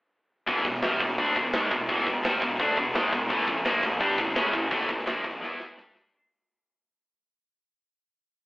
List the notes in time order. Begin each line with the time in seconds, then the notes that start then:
0.47 E1 E2 B2 E3, kick, open hi-hat
0.57 snare
0.65 E1 E2 B2, kick, open hi-hat
0.74 snare
0.82 F1 F2 C3 F3, snare, open hi-hat
1.00 E1 E2 B2, kick, open hi-hat
1.18 D2 D3 A3 D4, kick, open hi-hat
1.36 E1 E2 B2, kick, open hi-hat
1.53 G#1 G#2 D#3 G#3, snare, open hi-hat
1.71 E1 E2 B2, kick, open hi-hat
1.88 E1 E2 B2 E3, kick, open hi-hat
1.99 snare
2.06 E1 E2 B2, kick, open hi-hat
2.23 F1 F2 C3 F3, snare, open hi-hat
2.41 E1 E2 B2, kick, open hi-hat
2.59 D2 D3 A3 D4, kick, open hi-hat
2.77 E1 E2 B2, kick, open hi-hat
2.94 G#1 G#2 D#3 G#3, snare, open hi-hat
3.12 E1 E2 B2, kick, open hi-hat
3.29 A1 A2 E3 A3, kick, open hi-hat
3.39 snare
3.47 A1 A2 E3, kick, open hi-hat
3.65 A#1 A#2 F3 A#3, snare, open hi-hat
3.82 A1 A2 E3, kick, open hi-hat
4.00 G2 G3 D4 G4, kick, open hi-hat
4.18 A1 A2 E3, kick, open hi-hat
4.35 C#2 C#3 G#3 C#4, snare, open hi-hat
4.53 A1 A2 E3, kick, open hi-hat
4.71 A1 A2 E3 A3, kick, open hi-hat
4.81 snare
4.89 A1 A2 E3, kick, open hi-hat
4.98 snare
5.06 A#1 A#2 F3 A#3, snare, open hi-hat
5.24 A1 A2 E3, kick, open hi-hat
5.41 E2 E3 B3 E4, snare
5.60 snare
5.76 G2 G3 D4 G4, snare
5.95 snare